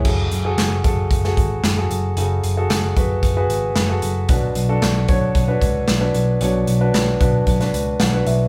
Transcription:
<<
  \new Staff \with { instrumentName = "Upright piano" } { \time 4/4 \key b \dorian \tempo 4 = 113 <fis' gis' a'>8. <fis' gis' a'>8. <fis' gis' a'>8. <fis' gis' a'>4 <fis' gis' a'>8. | <fis' gis' a'>8. <fis' gis' a'>8. <fis' gis' b'>8. <fis' gis' b'>4 <fis' gis' a'>8. | <d' fis' b'>8. <d' fis' a'>8. <d' fis' cis''>8. <d' fis' b'>4 <d' fis' b'>8. | <d' fis' cis''>8. <d' fis' b'>8. <d' fis' b'>8. <d' fis' b'>4 <d' fis' b'>8. | }
  \new Staff \with { instrumentName = "Upright piano" } { \clef bass \time 4/4 \key b \dorian cis4. r2 r8 | cis4. r2 r8 | <b, fis>4. r2 r8 | <b, fis>4. r4. fis''8 e''8 | }
  \new Staff \with { instrumentName = "Picked electric bass" } { \clef bass \time 4/4 \key b \dorian fis,,8 fis,,8 fis,,8 fis,,8 fis,,8 gis,,8 fis,,8 fis,,8 | fis,,8 fis,,8 fis,,8 fis,,8 fis,,8 gis,,8 fis,,8 fis,,8 | b,,8 b,,8 b,,8 b,,8 b,,8 cis,8 b,,8 b,,8 | b,,8 b,,8 b,,8 b,,8 b,,8 cis,8 b,,8 b,,8 | }
  \new DrumStaff \with { instrumentName = "Drums" } \drummode { \time 4/4 <cymc bd>8 hh8 <hc hh sn>8 <hh bd>8 <hh bd>16 sn16 <hh bd>8 <hc hh sn>8 hh8 | hh8 hh8 <hc hh sn>8 <hh bd>8 <hh bd>8 hh8 <hc hh sn>8 hh8 | <hh bd>8 hh8 <hc hh sn>8 <hh bd>8 <hh bd>8 <hh bd>8 <hc hh sn>8 hh8 | hh8 hh8 <hc hh sn>8 <hh bd>8 <hh bd>16 <hh sn>16 hh8 <hc hh sn>8 hh8 | }
>>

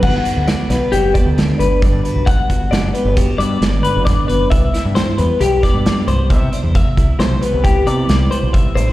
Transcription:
<<
  \new Staff \with { instrumentName = "Clean electric guitar" } { \time 5/4 \key g \major \tempo 4 = 134 fis''4 d''8 b'8 g'8 d''4 b'8 d''8 b'8 | fis''4 d''8 b'8 g'8 d''4 b'8 d''8 b'8 | e''4 c''8 b'8 g'8 d''4 c''8 e''8 c''8 | e''4 c''8 b'8 g'8 d''4 c''8 e''8 c''8 | }
  \new Staff \with { instrumentName = "Clean electric guitar" } { \time 5/4 \key g \major << { <g b fis' b'>8 fis'4 b8 fis'8 b4 d''4 fis'8 | r8 fis'4 b8 fis'8 b4 d''4. | r8 e'4 b8 e'8 b4 b'4 d'16 e'16 | r8 e'4 b8 e'8 b4 b'4 d'16 e'16 | } \\ { r4. g4. d4 g,4 | g,4. g4. d4 a,8 b,8 | r4. g4. g4 c4 | c4. g4. g4 c4 | } >> }
  \new Staff \with { instrumentName = "Fingered electric bass" } { \clef bass \time 5/4 \key g \major g,,8 r16 d,8 r16 b,,16 r16 fis,,8. d,8. g,,8 g,8 r16 b,,16~ | b,,16 r16 g,,8 fis,,8 r16 g,,8. g,8 g,,8 r16 fis,,8 r16 fis,,8 | c,8 r16 g,8 r16 e,16 r16 b,,8. g,8. c,8 c8 r16 e,16~ | e,16 r16 c,8 b,,8 r16 c,8. c8 c,8 r16 b,,8 r16 a,,8 | }
  \new DrumStaff \with { instrumentName = "Drums" } \drummode { \time 5/4 <cymc bd>8 hh8 <hh sn>8 <hh sn>8 hh8 <hh bd>8 <hh sn>8 hh8 <hh bd>8 hh8 | <hh bd>8 <hh bd>8 <hh sn>8 hh8 <hh bd>8 hh8 <hh sn>8 hh8 <hh bd sn>8 hh8 | <hh bd>8 <hh sn>8 <hh sn>8 hh8 hh8 <hh bd sn>8 <hh sn>8 hh8 <hh bd>8 hh8 | <hh bd>8 <hh bd>8 <hh sn>8 hh8 <hh bd>8 hh8 <hh sn>8 hh8 <hh bd>8 hh8 | }
>>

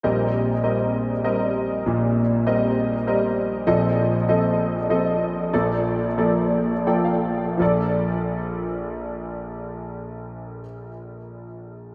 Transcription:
<<
  \new Staff \with { instrumentName = "Grand piano" } { \time 3/4 \key bes \major \tempo 4 = 93 << { r2. | r2. | r2. | r2 g''16 f''8. |
r2. | r2. | } \\ { <g c' bes' ees''>4 <g c' bes' ees''>4 <g c' bes' ees''>4~ | <g c' bes' ees''>8 r8 <g c' bes' ees''>4 <g c' bes' ees''>4 | <f c' a' ees''>4 <f c' a' ees''>4 <f c' a' ees''>4 | <f bes a' d''>4 <f bes a' d''>4 <f bes a' d''>4 |
<f bes a' d''>2.~ | <f bes a' d''>2. | } >> }
  \new Staff \with { instrumentName = "Grand piano" } { \clef bass \time 3/4 \key bes \major <bes,, bes,>2. | <bes,, bes,>2. | <bes,, bes,>2. | <bes,, bes,>2. |
bes,,2.~ | bes,,2. | }
>>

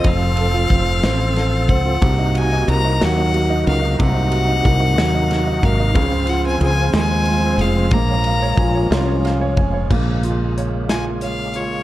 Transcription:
<<
  \new Staff \with { instrumentName = "Violin" } { \time 6/8 \key bes \minor \tempo 4. = 61 f''2~ f''8 ges''8~ | ges''8 aes''8 bes''8 ges''4 f''8 | ges''2~ ges''8 f''8~ | f''8 ges''16 aes''16 aes''8 aes''4 f''8 |
bes''2 r4 | r4. aes''8 f''8 des''8 | }
  \new Staff \with { instrumentName = "Grand piano" } { \time 6/8 \key bes \minor <f c' f' a' c''>16 f'16 a'16 f'16 c''8 c'8 a'8 c''16 f'16 | c16 ees'16 ges'16 ees'16 bes'16 ees'16 ges16 ees'16 ges'16 ees'16 bes'16 ees'16 | c16 ees'16 ges'16 ees'16 bes'16 ees'16 ges16 ees'16 ges'16 ees'16 bes'16 ees'16 | des16 c'16 f'16 c'16 aes'16 c'16 aes16 c'16 f'16 c'16 aes'16 c'16 |
bes16 des''16 f''16 des''16 aes''16 des''16 f'16 des''16 f''16 des''16 aes''16 des''16 | bes8 f'8 des''8 f'8 des''8 f'8 | }
  \new Staff \with { instrumentName = "French horn section" } { \time 6/8 \key bes \minor r2. | r2. | r2. | r2. |
r4 f'8 des'4. | r2. | }
  \new Staff \with { instrumentName = "Tonewheel organ" } { \time 6/8 \key bes \minor <c' a'>2. | <c ees' ges'>2.~ | <c ees' ges'>2. | <c' f'>2. |
<aes bes>2. | <aes bes>2. | }
  \new Staff \with { instrumentName = "Tonewheel organ" } { \clef bass \time 6/8 \key bes \minor f2. | bes2.~ | bes2. | f2.~ |
f2. | des2. | }
  \new Staff \with { instrumentName = "Fretless electric bass" } { \clef bass \time 6/8 \key bes \minor f,,4 f,,8 a,,4 des,8 | c,4 c,8 ees,4 des,8 | c,4 c,8 ees,4 aes,,8 | des,4 des,8 ees,4 f,,8 |
bes,,4 bes,,8 c,4 f,,8 | bes,,2. | }
  \new DrumStaff \with { instrumentName = "Drums" } \drummode { \time 6/8 <bd cymr>8 cymr8 <bd cymr>8 <cymr sn>8 <cymr sn>8 <bd cymr>8 | <bd cymr>8 cymr8 cymr8 <cymr sn>8 cymr8 cymr8 | <bd cymr>8 cymr8 <bd cymr>8 <cymr sn>8 <cymr sn>8 <bd cymr>8 | <bd cymr>8 cymr8 cymr8 <cymr sn>8 cymr8 cymr8 |
<bd cymr>8 cymr8 <bd cymr>8 <cymr sn>8 <cymr sn>8 <bd cymr>8 | <cymc bd>8 hh8 hh8 <hh sn>8 hh8 hh8 | }
>>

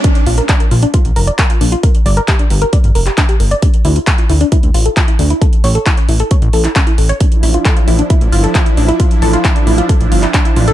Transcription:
<<
  \new Staff \with { instrumentName = "Synth pluck" } { \time 4/4 \key d \minor \tempo 4 = 134 d'16 r16 f'16 bes'16 d''16 bes'16 f'16 d'16 f'16 r16 bes'16 d''16 bes'16 f'16 d'16 f'16 | bes'16 r16 d''16 bes'16 g'16 d'16 g'16 bes'16 d''16 r16 bes'16 g'16 d'16 g'16 bes'16 d''16 | d'16 r16 e'16 f'16 a'16 f'16 e'16 d'16 e'16 r16 f'16 a'16 f'16 e'16 d'16 e'16 | a'16 r16 cis''16 a'16 e'16 cis'16 e'16 a'16 cis''16 r16 a'16 e'16 cis'16 e'16 a'16 cis''16 |
d'16 r16 e'16 f'16 a'16 f'16 e'16 d'16 e'16 r16 f'16 a'16 f'16 e'16 d'16 e'16 | f'16 r16 a'16 f'16 e'16 d'16 e'16 f'16 a'16 r16 f'16 e'16 d'16 e'16 f'16 a'16 | }
  \new Staff \with { instrumentName = "Supersaw synth" } { \time 4/4 \key d \minor r1 | r1 | r1 | r1 |
<f d' e'>1~ | <f d' e'>1 | }
  \new Staff \with { instrumentName = "Analog synth bass" } { \clef bass \time 4/4 \key d \minor r8 bes,,16 r8. bes,,16 r8 bes,,16 f,,16 r8. bes,,16 r16 | r8 g,,16 r8. g,,16 r8 g,,16 f,,16 r8. g,,16 r16 | r8 d,16 r8. d,16 r8 d,16 a,,16 r8. d,16 r16 | r8 a,,16 r8. a,,16 r8 a,,16 a,,16 r8. a,,16 r16 |
r8 a,,16 r8. a,,16 r8 a,,16 g,,16 r8. a,,16 r16 | r8 a,,16 r8. a,,16 r8 a,,16 g,,16 r8. a,,16 r16 | }
  \new DrumStaff \with { instrumentName = "Drums" } \drummode { \time 4/4 <hh bd>16 hh16 hho16 hh16 <hc hh bd>16 hh16 hho16 hh16 <hh bd>16 hh16 hho16 hh16 <hc hh bd>16 hh16 hho16 hh16 | <hh bd>16 hh16 hho16 hh16 <hc hh bd>16 hh16 hho16 hh16 <hh bd>16 hh16 hho16 <hc hh>16 <hc hh bd>16 hh16 hho16 hh16 | <hh bd>16 hh16 hho16 hh16 <hc hh bd>16 hh16 hho16 hh16 <hh bd>16 hh16 hho16 hh16 <hc hh bd>16 hh16 hho16 hh16 | <hh bd>16 hh16 hho16 hh16 <hc hh bd>16 hh16 hho16 hh16 <hh bd>16 hh16 hho16 <hc hh>16 <hc hh bd>16 hh16 hho16 hh16 |
<hh bd>16 hh16 hho16 hh16 <hc hh bd>16 hh16 hho16 hh16 <hh bd>16 hh16 hho16 hh16 <hc hh bd>16 hh16 hho16 hh16 | <hh bd>16 hh16 hho16 hh16 <hc hh bd>16 hh16 hho16 hh16 <hh bd>16 hh16 hho16 <hc hh>16 <hc hh bd>16 hh16 hho16 hh16 | }
>>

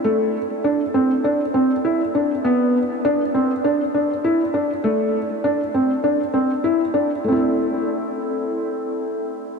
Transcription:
\new Staff \with { instrumentName = "Felt piano" } { \time 4/4 \key a \minor \tempo 4 = 100 a4 d'8 c'8 d'8 c'8 e'8 d'8 | b4 d'8 c'8 d'8 d'8 e'8 d'8 | a4 d'8 c'8 d'8 c'8 e'8 d'8 | <a c' e' a'>1 | }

